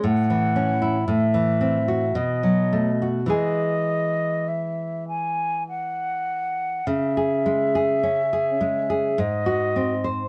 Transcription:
<<
  \new Staff \with { instrumentName = "Flute" } { \time 3/4 \key e \major \tempo 4 = 52 fis''4 e''4 dis''4 | dis''4 e''8 gis''8 fis''4 | \key cis \minor e''2 dis''4 | }
  \new Staff \with { instrumentName = "Nylon-string guitar" } { \time 3/4 \key e \major a,16 e16 cis'16 e'16 a,16 e16 c'16 fis'16 b,16 fis16 a16 fis'16 | <e gis gis'>2. | \key cis \minor cis16 gis'16 gis16 gis'16 cis'16 gis'16 gis16 gis'16 gis,16 fis'16 bis16 bis'16 | }
>>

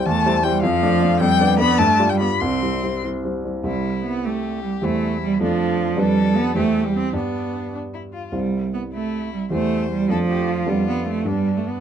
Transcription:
<<
  \new Staff \with { instrumentName = "Violin" } { \time 6/8 \key c \major \tempo 4. = 102 a''4 g''8 f''4. | g''4 b''8 a''8. g''16 b''8 | c'''4. r4. | e'4. g'4. |
e'4. d'4. | a'4. g'4. | d'4. d'8 e'8 f'8 | r4. e'4. |
c''4. a'8 g'8 f'8~ | f'4. d'4. | }
  \new Staff \with { instrumentName = "Grand piano" } { \time 6/8 \key c \major e,8 <g e' c''>8 <g e' c''>8 f,8 <a d' d''>8 <a d' d''>8 | f,8 <b d' d''>8 <b d' d''>8 g,8 <g f' d''>8 <g f' d''>8 | c,8 <g e' c''>8 <g e' c''>8 <g e' c''>8 <g e' c''>8 <g e' c''>8 | <c, g e' c''>2. |
<e, g e' c''>4. <f, a d' a'>4. | <f, g d' b'>4. <e, g e' c''>4. | <g, g d' d''>2. | <c, g e' c''>2. |
<e, g e' c''>4. <f, a d' a'>4. | <f, b d' g'>4. <g, b d' g'>4. | }
  \new Staff \with { instrumentName = "Cello" } { \time 6/8 \key c \major a4 g8 f4. | g4 b8 a8. g16 b8 | c'4. r4. | g4 b8 a4 g8 |
a4 g8 f4. | g4 b8 a8. g16 c'8 | b4. r4. | g4 b8 a4 g8 |
a4 g8 f4. | g8 b8 a8 g8. a16 b8 | }
>>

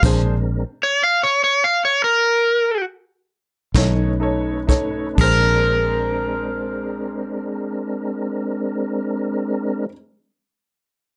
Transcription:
<<
  \new Staff \with { instrumentName = "Overdriven electric guitar" } { \time 12/8 \key bes \mixolydian \tempo 4. = 40 r4 des''16 f''16 des''16 des''16 f''16 des''16 bes'4 r2 r8 | bes'1. | }
  \new Staff \with { instrumentName = "Upright piano" } { \time 12/8 \key bes \mixolydian <d' aes' c''>8 r1 <dis' a' cis''>8 <dis' a' cis''>8 <dis' a' cis''>8 | <d' aes' c''>1. | }
  \new Staff \with { instrumentName = "Tonewheel organ" } { \time 12/8 \key bes \mixolydian <aes c' d' bes'>4 r2. r8 <a cis' dis' b'>4. | <aes c' d' bes'>1. | }
  \new Staff \with { instrumentName = "Fingered electric bass" } { \clef bass \time 12/8 \key bes \mixolydian bes,,4 r2. r8 b,,4. | bes,,1. | }
  \new DrumStaff \with { instrumentName = "Drums" } \drummode { \time 12/8 <cymc hh bd>4. r4. r4. <hh bd sn>4 <hh bd sn>8 | <cymc bd>4. r4. r4. r4. | }
>>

